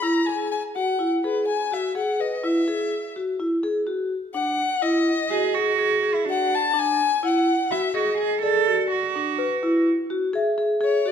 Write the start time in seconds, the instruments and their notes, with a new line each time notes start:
0.03 vibraphone E4, violin A#5
0.26 vibraphone G#4, celesta G#4, violin G#5
0.51 violin G#5
0.75 vibraphone F#4, violin F#5
0.99 vibraphone E4
1.23 vibraphone G#4, violin B4
1.47 violin G#5
1.72 vibraphone F#4, violin E5
1.95 vibraphone G#4, violin F#5
2.20 celesta B4, violin D#5
2.44 vibraphone E4, violin E5
2.68 vibraphone G#4
3.16 vibraphone F#4
3.40 vibraphone E4
3.63 vibraphone G#4
3.87 vibraphone F#4
4.34 vibraphone D4, violin F#5
4.82 vibraphone E4, violin D#5
5.30 vibraphone F#4, cello G#4
5.54 cello F#4, vibraphone G#4
5.79 vibraphone G#4
6.03 vibraphone G#4
6.14 cello E4
6.25 cello D4, vibraphone F#4
6.30 violin F#5
6.55 violin A5
6.74 vibraphone D4
6.79 violin G#5
7.23 vibraphone E4, violin F#5
7.71 cello E4, vibraphone F#4, violin E5
7.94 cello F#4, vibraphone G#4, violin D#5
8.18 cello G#4, vibraphone G#4
8.42 vibraphone G#4, cello A4, celesta D5
8.67 vibraphone F#4
8.91 cello F#4
9.15 vibraphone D4
9.39 celesta B4
9.63 vibraphone E4
10.10 vibraphone F#4
10.33 vibraphone G#4, celesta E5
10.58 vibraphone G#4
10.81 vibraphone G#4, violin C#5
11.06 vibraphone F#4, violin D5